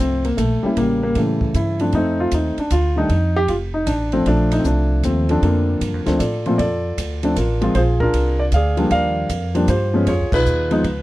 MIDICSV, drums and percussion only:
0, 0, Header, 1, 2, 480
1, 0, Start_track
1, 0, Key_signature, -2, "major"
1, 0, Tempo, 387597
1, 951, Time_signature, 3, 2, 24, 8
1, 13651, End_track
2, 0, Start_track
2, 0, Title_t, "Drums"
2, 303, Note_on_c, 9, 51, 45
2, 427, Note_off_c, 9, 51, 0
2, 469, Note_on_c, 9, 44, 51
2, 469, Note_on_c, 9, 51, 59
2, 470, Note_on_c, 9, 36, 23
2, 593, Note_off_c, 9, 36, 0
2, 593, Note_off_c, 9, 44, 0
2, 593, Note_off_c, 9, 51, 0
2, 949, Note_on_c, 9, 51, 51
2, 951, Note_on_c, 9, 36, 19
2, 1073, Note_off_c, 9, 51, 0
2, 1074, Note_off_c, 9, 36, 0
2, 1426, Note_on_c, 9, 51, 51
2, 1432, Note_on_c, 9, 36, 27
2, 1550, Note_off_c, 9, 51, 0
2, 1556, Note_off_c, 9, 36, 0
2, 1745, Note_on_c, 9, 36, 46
2, 1869, Note_off_c, 9, 36, 0
2, 1912, Note_on_c, 9, 36, 22
2, 1912, Note_on_c, 9, 44, 45
2, 1912, Note_on_c, 9, 51, 57
2, 2036, Note_off_c, 9, 36, 0
2, 2036, Note_off_c, 9, 44, 0
2, 2036, Note_off_c, 9, 51, 0
2, 2223, Note_on_c, 9, 51, 40
2, 2347, Note_off_c, 9, 51, 0
2, 2383, Note_on_c, 9, 51, 45
2, 2392, Note_on_c, 9, 36, 17
2, 2507, Note_off_c, 9, 51, 0
2, 2516, Note_off_c, 9, 36, 0
2, 2866, Note_on_c, 9, 44, 64
2, 2866, Note_on_c, 9, 51, 62
2, 2873, Note_on_c, 9, 36, 23
2, 2990, Note_off_c, 9, 44, 0
2, 2990, Note_off_c, 9, 51, 0
2, 2997, Note_off_c, 9, 36, 0
2, 3191, Note_on_c, 9, 51, 43
2, 3315, Note_off_c, 9, 51, 0
2, 3349, Note_on_c, 9, 44, 54
2, 3349, Note_on_c, 9, 51, 60
2, 3354, Note_on_c, 9, 36, 18
2, 3473, Note_off_c, 9, 44, 0
2, 3473, Note_off_c, 9, 51, 0
2, 3478, Note_off_c, 9, 36, 0
2, 3833, Note_on_c, 9, 36, 22
2, 3833, Note_on_c, 9, 51, 51
2, 3957, Note_off_c, 9, 36, 0
2, 3957, Note_off_c, 9, 51, 0
2, 4313, Note_on_c, 9, 36, 28
2, 4313, Note_on_c, 9, 51, 57
2, 4437, Note_off_c, 9, 36, 0
2, 4437, Note_off_c, 9, 51, 0
2, 4789, Note_on_c, 9, 44, 53
2, 4789, Note_on_c, 9, 51, 64
2, 4792, Note_on_c, 9, 36, 18
2, 4912, Note_off_c, 9, 44, 0
2, 4912, Note_off_c, 9, 51, 0
2, 4916, Note_off_c, 9, 36, 0
2, 5102, Note_on_c, 9, 51, 41
2, 5226, Note_off_c, 9, 51, 0
2, 5273, Note_on_c, 9, 51, 49
2, 5275, Note_on_c, 9, 36, 15
2, 5397, Note_off_c, 9, 51, 0
2, 5398, Note_off_c, 9, 36, 0
2, 5591, Note_on_c, 9, 51, 64
2, 5715, Note_off_c, 9, 51, 0
2, 5752, Note_on_c, 9, 44, 62
2, 5754, Note_on_c, 9, 36, 23
2, 5876, Note_off_c, 9, 44, 0
2, 5878, Note_off_c, 9, 36, 0
2, 6234, Note_on_c, 9, 44, 58
2, 6234, Note_on_c, 9, 51, 56
2, 6235, Note_on_c, 9, 36, 18
2, 6358, Note_off_c, 9, 44, 0
2, 6358, Note_off_c, 9, 51, 0
2, 6359, Note_off_c, 9, 36, 0
2, 6551, Note_on_c, 9, 51, 39
2, 6675, Note_off_c, 9, 51, 0
2, 6716, Note_on_c, 9, 36, 23
2, 6721, Note_on_c, 9, 51, 51
2, 6840, Note_off_c, 9, 36, 0
2, 6844, Note_off_c, 9, 51, 0
2, 7197, Note_on_c, 9, 36, 20
2, 7198, Note_on_c, 9, 44, 49
2, 7198, Note_on_c, 9, 51, 60
2, 7321, Note_off_c, 9, 36, 0
2, 7322, Note_off_c, 9, 44, 0
2, 7322, Note_off_c, 9, 51, 0
2, 7509, Note_on_c, 9, 51, 42
2, 7513, Note_on_c, 9, 38, 56
2, 7633, Note_off_c, 9, 51, 0
2, 7637, Note_off_c, 9, 38, 0
2, 7678, Note_on_c, 9, 44, 55
2, 7678, Note_on_c, 9, 51, 60
2, 7679, Note_on_c, 9, 36, 22
2, 7802, Note_off_c, 9, 44, 0
2, 7802, Note_off_c, 9, 51, 0
2, 7803, Note_off_c, 9, 36, 0
2, 7995, Note_on_c, 9, 51, 37
2, 8119, Note_off_c, 9, 51, 0
2, 8160, Note_on_c, 9, 36, 18
2, 8162, Note_on_c, 9, 51, 55
2, 8284, Note_off_c, 9, 36, 0
2, 8286, Note_off_c, 9, 51, 0
2, 8641, Note_on_c, 9, 36, 26
2, 8643, Note_on_c, 9, 44, 58
2, 8643, Note_on_c, 9, 51, 70
2, 8765, Note_off_c, 9, 36, 0
2, 8767, Note_off_c, 9, 44, 0
2, 8767, Note_off_c, 9, 51, 0
2, 8952, Note_on_c, 9, 51, 47
2, 9076, Note_off_c, 9, 51, 0
2, 9119, Note_on_c, 9, 44, 53
2, 9119, Note_on_c, 9, 51, 67
2, 9120, Note_on_c, 9, 36, 23
2, 9243, Note_off_c, 9, 44, 0
2, 9243, Note_off_c, 9, 51, 0
2, 9244, Note_off_c, 9, 36, 0
2, 9431, Note_on_c, 9, 51, 42
2, 9555, Note_off_c, 9, 51, 0
2, 9594, Note_on_c, 9, 51, 51
2, 9598, Note_on_c, 9, 36, 21
2, 9718, Note_off_c, 9, 51, 0
2, 9722, Note_off_c, 9, 36, 0
2, 9912, Note_on_c, 9, 36, 47
2, 10036, Note_off_c, 9, 36, 0
2, 10075, Note_on_c, 9, 51, 64
2, 10077, Note_on_c, 9, 36, 23
2, 10199, Note_off_c, 9, 51, 0
2, 10201, Note_off_c, 9, 36, 0
2, 10547, Note_on_c, 9, 44, 46
2, 10547, Note_on_c, 9, 51, 58
2, 10553, Note_on_c, 9, 36, 26
2, 10671, Note_off_c, 9, 44, 0
2, 10671, Note_off_c, 9, 51, 0
2, 10677, Note_off_c, 9, 36, 0
2, 10864, Note_on_c, 9, 51, 43
2, 10988, Note_off_c, 9, 51, 0
2, 11029, Note_on_c, 9, 51, 53
2, 11033, Note_on_c, 9, 36, 19
2, 11153, Note_off_c, 9, 51, 0
2, 11156, Note_off_c, 9, 36, 0
2, 11511, Note_on_c, 9, 44, 54
2, 11511, Note_on_c, 9, 51, 65
2, 11513, Note_on_c, 9, 36, 23
2, 11635, Note_off_c, 9, 44, 0
2, 11635, Note_off_c, 9, 51, 0
2, 11637, Note_off_c, 9, 36, 0
2, 11825, Note_on_c, 9, 51, 49
2, 11949, Note_off_c, 9, 51, 0
2, 11986, Note_on_c, 9, 44, 65
2, 11986, Note_on_c, 9, 51, 67
2, 11990, Note_on_c, 9, 36, 17
2, 12110, Note_off_c, 9, 44, 0
2, 12110, Note_off_c, 9, 51, 0
2, 12114, Note_off_c, 9, 36, 0
2, 12466, Note_on_c, 9, 51, 59
2, 12470, Note_on_c, 9, 36, 19
2, 12590, Note_off_c, 9, 51, 0
2, 12594, Note_off_c, 9, 36, 0
2, 12783, Note_on_c, 9, 36, 83
2, 12786, Note_on_c, 9, 49, 78
2, 12907, Note_off_c, 9, 36, 0
2, 12910, Note_off_c, 9, 49, 0
2, 12952, Note_on_c, 9, 44, 56
2, 13076, Note_off_c, 9, 44, 0
2, 13261, Note_on_c, 9, 51, 47
2, 13385, Note_off_c, 9, 51, 0
2, 13428, Note_on_c, 9, 51, 55
2, 13429, Note_on_c, 9, 36, 23
2, 13551, Note_off_c, 9, 51, 0
2, 13552, Note_off_c, 9, 36, 0
2, 13651, End_track
0, 0, End_of_file